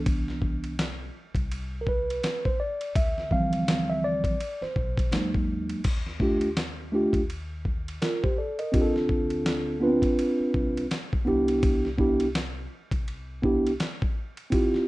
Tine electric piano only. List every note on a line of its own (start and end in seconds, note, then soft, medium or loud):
0.00 0.74 E3 soft
0.00 0.74 B3 soft
0.00 0.74 D4 soft
1.81 1.87 A#4 medium
1.89 2.47 B4 medium
2.45 2.60 C5 medium
2.60 2.93 D5 medium
2.96 3.33 E5 loud
3.31 4.36 E3 medium
3.31 4.36 F3 medium
3.31 4.36 G3 soft
3.31 4.36 C4 medium
3.31 3.91 F5 loud
3.90 4.04 E5 medium
4.04 4.63 D5 medium
4.62 5.30 C5 medium
5.12 5.81 F#3 medium
5.12 5.81 G#3 medium
5.12 5.81 A#3 medium
5.12 5.81 D#4 medium
6.20 6.47 A3 medium
6.20 6.48 D4 medium
6.20 6.49 F4 medium
6.20 6.49 G4 medium
6.92 7.20 A3 medium
6.92 7.20 D4 medium
6.92 7.21 F4 medium
6.92 7.21 G4 medium
8.02 8.22 F4 medium
8.02 8.22 A#4 medium
8.23 8.37 G4 medium
8.23 8.37 C5 medium
8.38 8.58 A4 medium
8.38 8.58 D5 medium
8.59 8.94 A#4 soft
8.59 8.93 D#5 medium
8.72 9.75 C4 medium
8.72 9.76 D4 medium
8.72 9.76 F4 medium
8.72 8.82 G4 medium
8.82 9.80 A4 medium
9.80 9.89 B3 medium
9.80 10.84 D4 medium
9.80 10.85 F4 medium
9.80 10.85 B4 medium
9.87 10.87 C4 medium
11.25 11.86 B3 medium
11.25 11.87 D4 medium
11.25 11.87 E4 medium
11.25 11.88 G4 loud
11.98 12.26 B3 medium
11.98 12.26 D4 medium
11.98 12.27 E4 medium
11.98 12.27 G4 medium
13.42 13.70 B3 medium
13.42 13.71 D4 medium
13.42 13.71 E4 medium
13.42 13.72 G4 medium
14.50 14.88 C4 medium
14.50 14.88 E4 medium
14.50 14.88 F4 medium
14.50 14.88 G4 medium